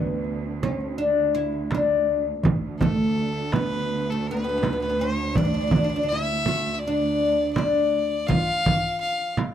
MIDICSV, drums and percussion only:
0, 0, Header, 1, 3, 480
1, 0, Start_track
1, 0, Tempo, 730816
1, 1602, Time_signature, 4, 2, 24, 8
1, 6268, End_track
2, 0, Start_track
2, 0, Title_t, "Darbuka"
2, 160, Note_on_c, 9, 62, 25
2, 226, Note_off_c, 9, 62, 0
2, 529, Note_on_c, 9, 62, 23
2, 594, Note_off_c, 9, 62, 0
2, 1001, Note_on_c, 9, 62, 22
2, 1067, Note_off_c, 9, 62, 0
2, 1121, Note_on_c, 9, 63, 64
2, 1187, Note_off_c, 9, 63, 0
2, 1244, Note_on_c, 9, 62, 23
2, 1310, Note_off_c, 9, 62, 0
2, 1599, Note_on_c, 9, 64, 82
2, 1665, Note_off_c, 9, 64, 0
2, 1843, Note_on_c, 9, 64, 79
2, 1909, Note_off_c, 9, 64, 0
2, 2082, Note_on_c, 9, 62, 24
2, 2148, Note_off_c, 9, 62, 0
2, 2314, Note_on_c, 9, 63, 66
2, 2380, Note_off_c, 9, 63, 0
2, 2442, Note_on_c, 9, 62, 23
2, 2508, Note_off_c, 9, 62, 0
2, 2927, Note_on_c, 9, 62, 24
2, 2993, Note_off_c, 9, 62, 0
2, 3045, Note_on_c, 9, 63, 63
2, 3111, Note_off_c, 9, 63, 0
2, 3168, Note_on_c, 9, 62, 26
2, 3234, Note_off_c, 9, 62, 0
2, 3525, Note_on_c, 9, 64, 82
2, 3591, Note_off_c, 9, 64, 0
2, 3758, Note_on_c, 9, 64, 85
2, 3824, Note_off_c, 9, 64, 0
2, 4007, Note_on_c, 9, 62, 25
2, 4073, Note_off_c, 9, 62, 0
2, 4370, Note_on_c, 9, 62, 24
2, 4436, Note_off_c, 9, 62, 0
2, 4729, Note_on_c, 9, 62, 24
2, 4795, Note_off_c, 9, 62, 0
2, 4965, Note_on_c, 9, 63, 69
2, 5031, Note_off_c, 9, 63, 0
2, 5089, Note_on_c, 9, 62, 22
2, 5154, Note_off_c, 9, 62, 0
2, 5212, Note_on_c, 9, 62, 22
2, 5278, Note_off_c, 9, 62, 0
2, 5442, Note_on_c, 9, 64, 82
2, 5508, Note_off_c, 9, 64, 0
2, 5691, Note_on_c, 9, 64, 78
2, 5756, Note_off_c, 9, 64, 0
2, 6164, Note_on_c, 9, 63, 63
2, 6229, Note_off_c, 9, 63, 0
2, 6268, End_track
3, 0, Start_track
3, 0, Title_t, "Frame drum"
3, 414, Note_on_c, 9, 64, 72
3, 480, Note_off_c, 9, 64, 0
3, 1127, Note_on_c, 9, 64, 66
3, 1193, Note_off_c, 9, 64, 0
3, 1609, Note_on_c, 9, 64, 88
3, 1675, Note_off_c, 9, 64, 0
3, 1846, Note_on_c, 9, 64, 86
3, 1912, Note_off_c, 9, 64, 0
3, 2321, Note_on_c, 9, 64, 68
3, 2387, Note_off_c, 9, 64, 0
3, 3040, Note_on_c, 9, 64, 63
3, 3106, Note_off_c, 9, 64, 0
3, 3516, Note_on_c, 9, 64, 71
3, 3582, Note_off_c, 9, 64, 0
3, 3752, Note_on_c, 9, 64, 73
3, 3817, Note_off_c, 9, 64, 0
3, 4242, Note_on_c, 9, 64, 68
3, 4308, Note_off_c, 9, 64, 0
3, 4965, Note_on_c, 9, 64, 68
3, 5031, Note_off_c, 9, 64, 0
3, 5450, Note_on_c, 9, 64, 82
3, 5515, Note_off_c, 9, 64, 0
3, 5689, Note_on_c, 9, 64, 86
3, 5755, Note_off_c, 9, 64, 0
3, 6157, Note_on_c, 9, 64, 66
3, 6223, Note_off_c, 9, 64, 0
3, 6268, End_track
0, 0, End_of_file